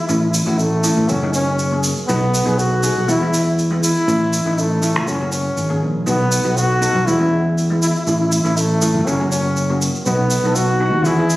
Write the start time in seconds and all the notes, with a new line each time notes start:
0.01 E4
0.07 A1 A3 C#4 E4, shaker
0.14 E4
0.22 E4
0.29 E4
0.34 E4, shaker
0.44 A1 A3 C#4 E4 F#4, shaker
0.59 A3, shaker
0.84 A3 C#4 E4, shaker
0.97 A1
1.09 F#1 A#3 C#4 F#4, shaker
1.23 A#3 C#4 D#4
1.34 C#4, shaker
1.59 shaker
1.71 A#3 C#4 G#4
1.83 shaker
1.97 shaker
2.08 B1 B3 D#4 F#4, shaker
2.34 shaker
2.45 B1 B3 D#4 G#4, shaker
2.58 F#4, shaker
2.83 B3 D#4 G#4, shaker
2.97 B1
3.08 E2 G#3 B3 E4, shaker
3.22 G#3 B3 E4
3.34 shaker
3.59 shaker
3.71 G#3 B3 E4
3.83 E4, shaker
3.97 shaker
4.08 A1 A3 C#4 E4, shaker
4.33 shaker
4.45 A1 A3 C#4 D#4
4.58 A3, shaker
4.82 A3 C#4 E4, shaker
4.96 C#2
5.06 F#1 A#3 C#4 F#4, shaker
5.20 A#3 C#4 F#4
5.32 C#4, shaker
5.57 G#1, shaker
5.69 A#3 C#4 G#4
5.83 A#1
6.06 B1 B3 D#4 F#4, shaker
6.32 shaker
6.44 B1 B3 D#4 F#4, shaker
6.57 F#4, shaker
6.81 B3 D#4 A4, shaker
6.95 B1
7.07 E2 G#3 B3 E4, shaker
7.19 G#3 B3 C#4
7.58 shaker
7.70 G#3 B3 E4
7.81 E4, shaker
7.89 E4
7.96 E4, shaker
8.05 A1 A3 C#4 E4, shaker
8.12 E4
8.19 E4
8.27 E4
8.32 E4, shaker
8.43 A1 A3 C#4 E4, shaker
8.57 A3, shaker
8.81 A3 C#4 E4, shaker
8.94 G#1
9.06 F#1 A#3 C#4 F#4, shaker
9.20 A#3 C#4 F#4
9.32 C#4, shaker
9.57 shaker
9.70 A#3 C#4 F#4
9.82 shaker
9.95 shaker
10.06 B1 B3 D#4 F#4, shaker
10.30 shaker
10.44 B1 B3 D#4 A4, shaker
10.55 F#4, shaker
10.80 B3 D#4 F#4
10.93 D#2
11.04 E2 B3 E4 G#4, shaker
11.18 B3 E4 G#4
11.30 shaker